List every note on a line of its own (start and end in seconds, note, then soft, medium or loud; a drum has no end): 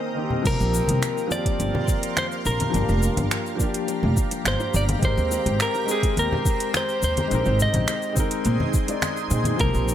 0.00 0.15 D#3 medium
0.00 0.16 A#3 medium
0.00 0.17 C4 medium
0.00 0.41 C4 medium
0.00 0.48 G#4 loud
0.00 0.41 A#4 medium
0.00 0.14 C5 medium
0.00 0.43 D#5 medium
0.15 0.41 D#3 medium
0.15 0.42 A#3 medium
0.15 0.42 C4 medium
0.15 0.43 G4 medium
0.30 low conga medium
0.42 0.55 C2 medium
0.42 1.26 F3 medium
0.42 1.27 A#3 medium
0.42 2.72 A#4 medium
0.42 4.99 F5 medium
0.42 2.72 C6 medium
0.42 kick loud
0.42 closed hi-hat soft
0.42 crash loud
0.42 cabasa soft
0.47 1.30 G4 medium
0.47 1.28 A#4 medium
0.60 0.78 A#1 medium
0.60 cabasa soft
0.74 high bongo soft
0.74 cabasa medium
0.88 0.98 C2 medium
0.88 closed hi-hat medium
0.88 high conga medium
0.88 cabasa soft
1.02 finger snap loud
1.02 closed hi-hat soft
1.02 high bongo medium
1.02 cabasa soft
1.18 cabasa soft
1.27 2.68 F3 medium
1.27 2.70 A#3 medium
1.27 high conga medium
1.31 2.71 C4 medium
1.31 2.72 G4 loud
1.31 2.18 D5 loud
1.31 cabasa medium
1.46 kick loud
1.46 closed hi-hat medium
1.46 high bongo medium
1.46 cabasa soft
1.60 1.69 G1 medium
1.60 closed hi-hat soft
1.60 cabasa soft
1.75 high bongo medium
1.75 high conga loud
1.75 low conga loud
1.88 kick loud
1.88 cabasa medium
2.03 closed hi-hat medium
2.03 cabasa soft
2.17 2.26 C5 medium
2.17 finger snap loud
2.17 closed hi-hat soft
2.17 high bongo medium
2.17 high conga medium
2.17 cabasa soft
2.32 cabasa soft
2.45 2.64 A#1 medium
2.45 3.56 A#4 medium
2.45 high bongo medium
2.45 cabasa medium
2.60 closed hi-hat medium
2.60 high conga loud
2.60 cabasa soft
2.70 3.54 F3 medium
2.70 3.56 A#3 medium
2.70 7.27 G4 medium
2.70 7.27 A#5 medium
2.74 2.83 G1 loud
2.74 3.57 D4 medium
2.74 3.58 G4 medium
2.74 closed hi-hat soft
2.74 cabasa soft
2.88 3.07 F1 medium
2.88 high bongo soft
2.88 cabasa soft
3.03 cabasa medium
3.17 3.26 G1 medium
3.17 closed hi-hat medium
3.17 high bongo medium
3.17 high conga loud
3.17 cabasa soft
3.31 finger snap loud
3.31 closed hi-hat soft
3.31 cabasa soft
3.46 cabasa soft
3.56 4.97 F3 medium
3.56 4.98 A#3 medium
3.56 high bongo medium
3.60 5.00 D4 medium
3.60 5.01 G4 loud
3.60 kick loud
3.60 cabasa medium
3.74 closed hi-hat medium
3.74 cabasa soft
3.88 closed hi-hat soft
3.88 high bongo medium
3.88 cabasa soft
4.03 4.12 F1 medium
4.03 high conga medium
4.03 low conga loud
4.17 kick loud
4.17 cabasa medium
4.31 closed hi-hat medium
4.31 high bongo soft
4.31 cabasa soft
4.45 4.55 G1 medium
4.45 4.76 C5 medium
4.45 finger snap loud
4.45 closed hi-hat soft
4.45 high conga medium
4.45 cabasa soft
4.60 high bongo medium
4.60 cabasa soft
4.74 4.93 G1 loud
4.74 4.84 D5 medium
4.74 cabasa medium
4.89 closed hi-hat medium
4.89 high conga loud
4.89 cabasa soft
4.99 5.83 G#3 medium
4.99 5.84 C4 medium
4.99 7.29 C5 medium
4.99 closed hi-hat soft
5.03 5.12 G#1 medium
5.03 5.85 G4 medium
5.03 5.87 A#4 medium
5.03 5.62 C5 medium
5.03 kick loud
5.03 high bongo soft
5.03 cabasa soft
5.17 5.35 D#2 medium
5.17 cabasa soft
5.31 high bongo medium
5.31 cabasa medium
5.46 5.55 G#1 medium
5.46 closed hi-hat medium
5.46 high conga medium
5.46 cabasa soft
5.60 5.90 A#4 medium
5.60 finger snap loud
5.60 closed hi-hat soft
5.60 cabasa soft
5.75 high bongo medium
5.75 cabasa soft
5.85 7.26 G#3 medium
5.85 7.27 C4 medium
5.85 cabasa medium
5.90 7.28 G4 medium
5.90 6.16 G#4 medium
5.90 7.30 A#4 loud
6.03 kick loud
6.03 closed hi-hat medium
6.03 high bongo medium
6.03 cabasa soft
6.17 6.26 D#2 medium
6.17 6.71 A#4 medium
6.17 closed hi-hat soft
6.17 cabasa soft
6.32 high conga loud
6.32 low conga medium
6.46 kick loud
6.46 high bongo medium
6.46 cabasa medium
6.60 closed hi-hat medium
6.60 cabasa soft
6.74 7.03 C5 loud
6.74 finger snap loud
6.74 closed hi-hat soft
6.74 high bongo medium
6.74 high conga medium
6.74 cabasa soft
6.89 cabasa soft
7.03 7.21 D#2 medium
7.03 7.62 C5 loud
7.03 cabasa medium
7.17 closed hi-hat medium
7.17 high bongo medium
7.17 high conga loud
7.17 cabasa soft
7.27 7.41 A#1 medium
7.27 8.11 G#3 medium
7.27 8.13 C4 medium
7.27 9.57 G#4 medium
7.27 9.57 C6 loud
7.31 9.57 D#4 medium
7.31 8.14 D#4 medium
7.31 8.15 A#4 medium
7.31 closed hi-hat soft
7.31 cabasa soft
7.46 7.64 G#1 medium
7.46 high bongo medium
7.46 cabasa soft
7.60 8.14 D#5 loud
7.60 low conga medium
7.60 cabasa medium
7.74 7.83 A#1 medium
7.74 closed hi-hat medium
7.74 high conga loud
7.74 cabasa soft
7.88 finger snap loud
7.88 closed hi-hat soft
7.88 high bongo soft
7.88 cabasa soft
8.02 cabasa soft
8.13 8.84 G#3 medium
8.13 8.84 C4 medium
8.13 high bongo medium
8.13 cabasa medium
8.17 8.86 D#4 medium
8.17 8.87 A#4 loud
8.17 kick loud
8.17 high conga medium
8.31 closed hi-hat medium
8.31 cabasa soft
8.45 8.55 A#2 loud
8.45 closed hi-hat soft
8.45 cabasa soft
8.60 high bongo medium
8.60 high conga medium
8.60 low conga medium
8.74 kick loud
8.74 cabasa medium
8.86 9.26 G#3 medium
8.86 9.27 C4 medium
8.86 9.28 D#4 medium
8.86 9.28 D5 medium
8.86 closed hi-hat medium
8.86 high bongo medium
8.86 cabasa soft
9.02 finger snap loud
9.02 closed hi-hat soft
9.02 high conga medium
9.02 cabasa soft
9.17 cabasa soft
9.29 9.50 A#2 loud
9.29 9.55 G#3 medium
9.29 9.56 C4 medium
9.29 9.57 D#4 medium
9.29 9.57 G#4 medium
9.29 high bongo soft
9.29 cabasa medium
9.44 closed hi-hat medium
9.44 high conga loud
9.44 cabasa soft
9.56 9.69 C2 medium
9.56 9.95 F3 medium
9.56 9.95 A#3 medium
9.56 9.95 A#4 medium
9.56 9.95 F5 medium
9.56 9.95 C6 loud
9.56 kick loud
9.56 closed hi-hat soft
9.56 cabasa soft
9.61 9.95 C4 medium
9.61 9.95 G4 medium
9.61 9.95 A#4 loud
9.74 9.93 A#1 medium
9.74 cabasa soft
9.87 high bongo soft
9.87 cabasa medium